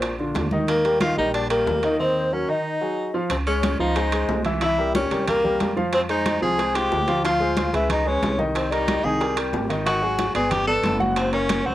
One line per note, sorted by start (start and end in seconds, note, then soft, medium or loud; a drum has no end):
0.00 0.31 A#1 medium
0.00 0.13 A#2 medium
0.00 0.13 A#3 medium
0.00 0.15 C4 medium
0.00 0.13 A#4 medium
0.00 0.15 C5 medium
0.00 high bongo medium
0.00 high timbale medium
0.18 0.46 D3 medium
0.18 0.46 D4 medium
0.18 0.46 F4 medium
0.18 high bongo soft
0.18 high conga soft
0.34 1.11 D#2 medium
0.34 high bongo medium
0.34 low bongo medium
0.34 high conga medium
0.34 high timbale medium
0.34 low timbale medium
0.51 0.79 D#3 medium
0.51 0.79 D#4 medium
0.51 0.79 D#5 medium
0.51 high bongo soft
0.51 high conga medium
0.68 0.98 A#3 medium
0.68 0.99 A#4 medium
0.68 high bongo medium
0.68 high timbale medium
0.84 0.98 G3 medium
0.84 0.98 G4 medium
0.84 0.98 A#4 medium
0.84 high conga soft
0.84 high timbale medium
1.00 1.14 D#3 medium
1.00 1.14 D#4 medium
1.00 1.16 F4 loud
1.00 1.15 D#5 medium
1.00 1.16 F5 medium
1.00 high bongo medium
1.00 high conga loud
1.00 high timbale medium
1.17 1.63 A#1 medium
1.17 1.44 G3 medium
1.17 1.33 D#4 medium
1.17 1.45 G4 medium
1.17 1.45 A#4 medium
1.17 1.33 D#5 medium
1.17 high conga soft
1.33 1.49 D4 medium
1.33 1.49 D5 medium
1.33 high bongo medium
1.33 high timbale medium
1.50 1.77 G3 medium
1.50 1.96 A#3 medium
1.50 1.77 G4 medium
1.50 1.96 A#4 medium
1.50 1.77 A#4 medium
1.50 high conga soft
1.50 high timbale medium
1.66 2.43 D#2 medium
1.66 high bongo medium
1.66 low bongo medium
1.66 high conga soft
1.66 low timbale medium
1.83 1.97 D#3 medium
1.83 1.97 D#4 medium
1.83 1.97 D#5 medium
1.83 high timbale medium
2.00 2.26 D#3 medium
2.00 2.35 C4 medium
2.00 2.27 D#4 medium
2.00 2.34 C5 medium
2.00 2.27 D#5 medium
2.32 2.46 F#3 medium
2.32 2.51 C#4 medium
2.32 2.46 F#4 medium
2.32 2.46 A#4 medium
2.32 2.51 C#5 medium
2.48 2.75 D#3 medium
2.48 2.75 D#4 medium
2.48 3.15 D#4 medium
2.48 2.76 D#5 medium
2.48 3.14 D#5 medium
2.81 3.08 F#3 medium
2.81 3.08 F#4 medium
2.81 3.09 G#4 medium
3.14 3.27 F3 medium
3.14 3.28 F4 medium
3.14 3.28 F5 medium
3.30 3.76 C#2 loud
3.30 3.38 C4 medium
3.30 3.36 C5 medium
3.30 high bongo medium
3.30 high conga soft
3.30 high timbale medium
3.46 3.74 G#3 medium
3.46 3.77 C#4 medium
3.46 3.74 G#4 medium
3.46 3.77 C#5 medium
3.46 3.74 C#5 medium
3.46 high conga soft
3.46 high timbale medium
3.63 high bongo medium
3.63 high conga loud
3.63 high timbale loud
3.79 4.25 C#2 medium
3.79 3.93 F3 medium
3.79 4.42 D#4 medium
3.79 3.93 F4 medium
3.79 4.42 D#5 medium
3.79 3.94 F5 medium
3.79 high conga soft
3.96 4.09 G#3 medium
3.96 4.10 G#4 medium
3.96 4.10 C5 medium
3.96 high bongo medium
3.96 high conga soft
3.96 high timbale medium
4.12 4.40 G#3 medium
4.12 4.40 G#4 medium
4.12 4.40 C5 medium
4.12 high conga soft
4.12 high timbale loud
4.29 5.05 C2 medium
4.29 high bongo medium
4.29 low bongo medium
4.29 high conga soft
4.29 low timbale medium
4.45 4.59 E3 medium
4.45 4.59 E4 medium
4.45 4.59 E5 medium
4.45 high conga medium
4.45 high timbale medium
4.61 4.76 E3 medium
4.61 4.92 E4 medium
4.61 4.76 E4 medium
4.61 4.92 E5 medium
4.61 4.76 E5 medium
4.61 high bongo medium
4.61 high conga soft
4.61 high timbale medium
4.78 5.05 G3 medium
4.78 5.05 G4 medium
4.78 5.05 A#4 medium
4.78 high conga soft
4.95 5.25 C#4 medium
4.95 5.25 C#5 medium
4.95 high bongo medium
4.95 high conga loud
4.95 high timbale medium
5.11 5.57 C2 medium
5.11 5.38 G3 medium
5.11 5.38 G4 medium
5.11 5.38 A#4 medium
5.11 high bongo soft
5.11 high conga soft
5.11 high timbale medium
5.27 5.74 A#3 medium
5.27 5.73 A#4 medium
5.27 high bongo medium
5.27 high conga soft
5.27 low conga medium
5.27 high timbale medium
5.44 5.71 G3 medium
5.44 5.71 G4 medium
5.44 5.71 A#4 medium
5.44 high bongo soft
5.44 high conga soft
5.44 low conga medium
5.60 6.37 F2 medium
5.60 high bongo medium
5.60 low bongo medium
5.60 high conga medium
5.60 high timbale medium
5.76 6.03 F3 medium
5.76 6.04 F4 medium
5.76 6.04 F5 medium
5.76 high bongo soft
5.76 high conga medium
5.93 6.01 C4 loud
5.93 6.00 C5 medium
5.93 high bongo medium
5.93 high conga soft
5.93 high timbale medium
6.09 6.36 G#3 medium
6.09 6.40 D#4 loud
6.09 6.36 G#4 medium
6.09 6.37 C5 medium
6.09 6.41 D#5 medium
6.09 high conga soft
6.09 high timbale medium
6.26 high bongo medium
6.26 high conga loud
6.26 high timbale medium
6.42 6.88 C2 loud
6.42 6.55 F3 medium
6.42 6.56 F4 medium
6.42 6.76 G#4 loud
6.42 6.56 F5 medium
6.42 6.78 G#5 medium
6.42 high conga soft
6.58 6.72 G#3 medium
6.58 6.72 G#4 medium
6.58 6.72 C5 medium
6.58 high bongo medium
6.58 high conga soft
6.58 high timbale medium
6.74 7.02 G#3 medium
6.74 7.02 F4 medium
6.74 7.24 G4 medium
6.74 7.02 C5 medium
6.74 7.25 G5 medium
6.74 high conga soft
6.74 high timbale medium
6.91 7.68 D2 medium
6.91 high bongo medium
6.91 low bongo medium
6.91 high conga soft
6.91 low timbale medium
7.07 7.21 F3 medium
7.07 7.21 F4 medium
7.07 7.21 F5 medium
7.07 high timbale medium
7.24 7.38 F3 medium
7.24 7.38 F4 medium
7.24 7.70 F4 loud
7.24 7.38 F5 medium
7.24 7.71 F5 medium
7.24 high bongo medium
7.24 high conga soft
7.24 high timbale medium
7.40 7.67 G#3 medium
7.40 7.67 G#4 medium
7.40 7.68 C5 medium
7.40 high conga soft
7.57 high bongo medium
7.57 high conga loud
7.57 high timbale medium
7.73 8.19 C#2 medium
7.73 8.00 G#3 medium
7.73 7.90 E4 medium
7.73 8.00 G#4 medium
7.73 8.00 B4 medium
7.73 7.89 E5 medium
7.73 high bongo soft
7.73 high conga soft
7.73 high timbale medium
7.90 8.09 D#4 medium
7.90 8.09 D#5 medium
7.90 high bongo medium
7.90 high conga soft
7.90 low conga medium
7.90 high timbale loud
8.05 8.33 G#3 medium
8.05 8.40 C#4 medium
8.05 8.33 G#4 medium
8.05 8.33 B4 medium
8.05 8.40 C#5 medium
8.05 high bongo soft
8.05 high conga soft
8.22 8.98 C2 medium
8.22 high bongo medium
8.22 low bongo medium
8.22 high conga medium
8.22 high timbale medium
8.39 8.66 D#3 medium
8.39 8.66 D#4 medium
8.39 8.66 D#5 medium
8.39 high bongo soft
8.39 high conga medium
8.55 8.74 C4 medium
8.55 8.72 C5 medium
8.55 high bongo medium
8.55 high conga soft
8.55 high timbale medium
8.71 8.98 G3 medium
8.71 9.06 D#4 loud
8.71 8.98 G4 medium
8.71 8.99 A#4 medium
8.71 9.06 D#5 medium
8.71 high conga soft
8.71 high timbale medium
8.88 high bongo medium
8.88 high conga medium
8.88 high timbale medium
9.04 9.50 C2 loud
9.04 9.17 D#3 medium
9.04 9.18 D#4 medium
9.04 9.37 G#4 medium
9.04 9.18 D#5 medium
9.04 9.37 G#5 medium
9.04 high conga soft
9.20 9.34 G3 medium
9.20 9.34 G4 medium
9.20 9.34 A#4 medium
9.20 high bongo medium
9.20 high conga soft
9.20 high timbale medium
9.36 9.63 G3 medium
9.36 9.63 G4 medium
9.36 9.64 A#4 medium
9.36 high conga soft
9.36 high timbale loud
9.53 10.29 G#1 medium
9.53 high bongo medium
9.53 low bongo medium
9.53 high conga soft
9.53 low timbale medium
9.69 9.83 D#3 medium
9.69 9.83 D#4 medium
9.69 9.83 D#5 medium
9.69 high timbale medium
9.86 9.99 D#3 medium
9.86 10.00 D#4 medium
9.86 10.32 F#4 loud
9.86 10.00 D#5 medium
9.86 10.32 F#5 medium
9.86 high bongo medium
9.86 high conga soft
9.86 high timbale medium
10.02 10.29 F#3 medium
10.02 10.29 F#4 medium
10.02 10.29 G#4 medium
10.02 high conga soft
10.19 high bongo medium
10.19 high conga medium
10.19 high timbale medium
10.35 10.81 G1 medium
10.35 10.62 B3 medium
10.35 10.53 G#4 medium
10.35 10.62 B4 medium
10.35 10.62 D5 medium
10.35 10.52 G#5 medium
10.35 high bongo soft
10.35 high conga soft
10.35 high timbale medium
10.50 10.67 G4 loud
10.50 10.67 G5 medium
10.50 high bongo medium
10.50 high conga soft
10.50 low conga medium
10.50 high timbale medium
10.67 10.94 B3 medium
10.67 10.98 A4 loud
10.67 10.95 B4 medium
10.67 10.95 D5 medium
10.67 10.98 A5 medium
10.67 high bongo soft
10.67 high conga soft
10.84 11.60 F#1 loud
10.84 high bongo medium
10.84 low bongo medium
10.84 high conga medium
10.84 high timbale medium
11.00 11.27 F#3 medium
11.00 11.27 F#4 medium
11.00 11.27 F#5 medium
11.00 high bongo soft
11.00 high conga medium
11.16 11.32 C4 medium
11.16 11.33 C5 medium
11.16 high bongo medium
11.16 high conga soft
11.16 high timbale medium
11.33 11.60 A#3 medium
11.33 11.67 C#4 loud
11.33 11.60 A#4 medium
11.33 11.68 C#5 medium
11.33 11.60 C#5 medium
11.33 high conga soft
11.33 high timbale medium
11.49 high bongo medium
11.49 high conga loud
11.49 high timbale loud
11.65 11.75 C#2 medium
11.65 11.75 F#3 medium
11.65 11.75 C4 loud
11.65 11.75 F#4 medium
11.65 11.75 C5 medium
11.65 11.75 F#5 medium
11.65 high conga soft